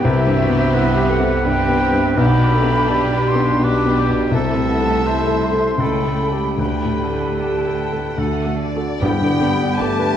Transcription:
0.01 C2 C3 C4 E4 G4 B4 E5
0.27 G2
0.39 F#4
0.49 B3
0.73 B3 E4 G4 B4
0.96 G4
1.09 A3 F#5
1.20 B3
1.45 G2 G3 C4 G4 B4 G5
1.69 B3
1.80 C4
1.92 G2
2.17 B1 B2 B3 D4 G4 B4 B5
2.38 B2
2.54 A3
2.63 B3
2.88 G3 D4 G4
3.13 G4
3.27 C6
3.35 B3
3.59 B2 G3 D4 G4 B4
3.64 B4 D6
3.86 B3
4.00 G4
4.10 B2
4.31 C2 C3 A3 C4 E4 A4 E5 A5
4.55 C3
4.69 B3
4.80 A3
5.03 A3 E4 C5
5.27 A4
5.44 C6
5.52 A3
5.78 C#2 C#3 A3 A4 G5
5.83 B5
6.04 A3
6.31 G4 A4
6.57 D2 D3 G3 A3 G4 A4 B4 G5 B5
6.85 A2
7.10 A3
7.36 A3 G4 A4 G5 A5
7.67 A4
7.92 A3
8.15 D2 D3 A3 F#4 A4 F#5
8.46 A3
8.58 D3 D5
8.76 F#4 A4
9.01 G1 G2 G3 B3 D4 E4 G4 B4 G5 B5
9.22 D3
9.41 G1 G2 B3 D4 G4 B4
9.62 D4
9.78 G1 G2 A3 B3 D4 G4 B4 A5 D6
9.99 B4

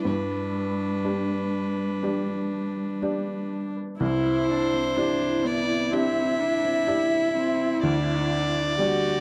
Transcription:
Already playing: B4 D5
0.05 G2 G3 D4 G4 B4
0.31 B4
0.56 B4
1.05 D4 G4 D5 B5
1.31 B4
1.79 B4
2.03 D4 G4 D5
2.29 D5
3.02 D4 G4 D5
3.77 B4
4.00 C2 C4 E4 C5
4.25 E4
4.49 D4 E4
4.73 C4
4.97 D4 E4 G4 C5 D5
5.21 E4
5.45 B3 C4 D5
5.68 E4
5.91 C4 D4 G4 D5 E5
6.40 D4 C5
6.64 C4
6.87 D4 E4 G4 D5
7.13 C5
7.35 C4
7.60 E4
7.83 D2 D4 D5
8.55 D4
8.78 G3 D4 F#4 G4 D5

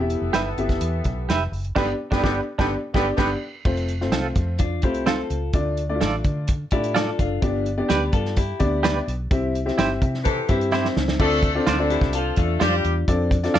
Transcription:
Already playing: E1 E3 B3 A4
0.00 B3 E4 G4 E5
0.10 closed hi-hat
0.21 F1
0.33 G1 G4 B4 E5, snare, closed hi-hat
0.57 G1 B3 E4 G4 E5, closed hi-hat
0.69 kick, snare, closed hi-hat
0.81 E2, closed hi-hat
1.04 B1, kick, closed hi-hat
1.28 F1 G4 B4 E5, snare, closed hi-hat
1.52 F#1, open hi-hat
1.64 closed hi-hat
1.75 G1 D3 B3 D4 G4 B4 D5, kick, snare, crash
2.11 G1 D3 B3 D4 G4 B4, kick, snare
2.17 D5
2.22 G1 D3 B3 D4 G4 B4 D5, kick, snare
2.59 G1 D3 B3 D4 G4 B4 D5, kick, snare
2.93 G1 D3 B3 D4 G4 B4 D5, kick, snare
3.16 G1 D3 B3 D4 G4 B4 D5, kick, snare, crash
3.65 F1 A3 C4 F4 C5, kick, crash
3.77 closed hi-hat
3.88 closed hi-hat
4.01 A3 C4 F4 C5, snare
4.12 C2 C4 F4 A4, snare, closed hi-hat
4.35 F2, kick, closed hi-hat
4.58 D4 F4, kick, closed hi-hat
4.82 C2 A3 C4 E4 F4 G4 C5, kick, closed hi-hat
4.94 closed hi-hat
5.06 C4 F4 A4, snare, closed hi-hat
5.30 C#2, closed hi-hat
5.53 D2 A3 D4 F4 D5, kick, closed hi-hat
5.77 closed hi-hat
5.89 A3 D4 E4 D5
5.95 F4
6.01 A1 F4 A4 D5, snare, closed hi-hat
6.24 D3, kick, closed hi-hat
6.48 kick, closed hi-hat
6.71 A2 A3 D4 E4 F4 G4 D5, kick, closed hi-hat
6.84 closed hi-hat
6.95 F4 A4 D5, snare, closed hi-hat
7.19 F#1 D4 F4 A4 F5, kick, closed hi-hat
7.42 G1 B3 D4 G4 D5, kick, closed hi-hat
7.66 closed hi-hat
7.78 B3 D4 G4 D5
7.89 D2 G4 B4 D5, snare, closed hi-hat
8.13 G2 F4 A4, kick, closed hi-hat
8.25 snare
8.36 E4 G4, kick, closed hi-hat
8.59 D2 B3 D4 G4 D5, kick, closed hi-hat
8.83 G4 B4 D5, snare, closed hi-hat
9.08 B1, closed hi-hat
9.31 C2 C4 E4 G4 E5, kick, closed hi-hat
9.55 closed hi-hat
9.66 C4 E4 G4 E5, snare
9.78 G1 E4 G4 C5, snare, closed hi-hat
10.02 C3, kick, closed hi-hat
10.14 snare
10.24 E3 C4 G4 A4, kick, closed hi-hat
10.48 G2 C4 E4 G4 E5, kick, closed hi-hat
10.61 closed hi-hat
10.72 C4 E4 G4 C5, snare
10.85 snare
10.96 C#2, snare
11.08 snare
11.19 D2 A3 C4 D4 F4 A4 D5, kick, crash
11.43 kick, closed hi-hat
11.55 F3 C4 D4 F4 A4 D5
11.66 D2 D3 D4 F4 C5 D5, snare, closed hi-hat
11.78 C4 D4 F4 A4 D5
11.90 E4 G4, closed hi-hat
12.01 C2, kick, snare
12.13 F3 F4 A4, closed hi-hat
12.36 E2 A3 D4 F4 A4, kick, closed hi-hat
12.60 F2 G3 F4 G4 C5 D5, snare, closed hi-hat
12.84 E2, closed hi-hat
13.08 F2 C4 D4 F4 A4 D5, kick, closed hi-hat
13.31 kick, closed hi-hat
13.43 C4 D4 F4 A4 D5, snare, closed hi-hat
13.54 F2 F4 A4 D5, snare, closed hi-hat

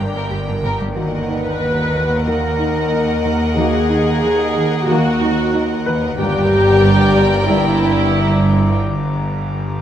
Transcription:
Already playing: G1 D4 A#4 D5 G5 A#5 D6
0.00 G3
0.15 G2 A#4
0.31 G1 G2 G3 G4
0.47 G2 D4
0.63 G1 G2 A#4
0.80 G2 G4
0.96 D#2 D#3 A#3 F#4 A#4 D#5 F#5 A#5
1.28 D#4 B4
1.62 D#3
1.95 D#3
2.27 D#3 A#3 F#4 A#4
2.60 D#4
2.93 D#4
3.25 D#3
3.57 D#3 A#3 F#4 G#4
3.90 D#4
4.23 D#3
4.56 D#3
4.88 D#3 A#3 F#4
5.21 D#4
5.54 D#4
5.86 D#3 B4
6.18 G1 G2 A#2 G4 A#4 D5 G5 A#5
6.52 G3
6.84 G2 D6
7.17 G2
7.49 G2 A#2 E4 G4
7.82 G3
8.47 G2

